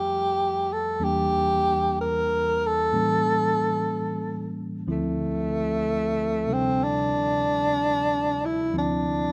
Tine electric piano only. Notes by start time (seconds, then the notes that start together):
Already playing: F2 F3 G3 A3 E5
1.00 E2 E3 G3 A#3 D4
2.93 A2 E3 G3 A#3 C#4
4.87 D2 D3 F3 C4 E4
6.47 C3 G3 D4 A4
8.73 D2 D3 F3 C4 E4